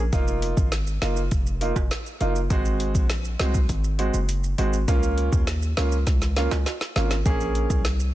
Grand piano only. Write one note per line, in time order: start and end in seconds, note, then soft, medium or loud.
0.13 0.67 A#3 medium
0.13 0.67 D#4 medium
0.13 0.68 F4 loud
1.02 1.19 A#3 medium
1.02 1.19 D#4 medium
1.02 1.19 F4 medium
1.61 1.78 A#3 medium
1.61 1.78 D#4 medium
1.61 1.78 F4 medium
2.20 2.38 A#3 medium
2.20 2.38 D#4 medium
2.20 2.38 F4 medium
2.50 3.05 G#3 medium
2.50 3.05 C4 medium
2.50 3.05 F#4 loud
3.39 3.56 G#3 medium
3.39 3.57 C4 medium
3.39 3.57 F#4 medium
3.99 4.16 G#3 medium
3.99 4.16 C4 medium
3.99 4.16 F#4 medium
4.58 4.75 G#3 medium
4.58 4.75 C4 medium
4.58 4.76 F#4 medium
4.88 5.43 A#3 medium
4.88 5.43 C#4 medium
4.88 5.43 F4 loud
5.77 5.94 A#3 medium
5.77 5.94 C#4 medium
5.77 5.94 F4 medium
6.36 6.53 A#3 medium
6.36 6.54 C#4 medium
6.36 6.54 F4 medium
6.96 7.13 A#3 medium
6.96 7.13 C#4 medium
6.96 7.13 F4 medium
7.26 7.80 A#3 medium
7.26 7.80 C#4 medium
7.26 7.81 G#4 loud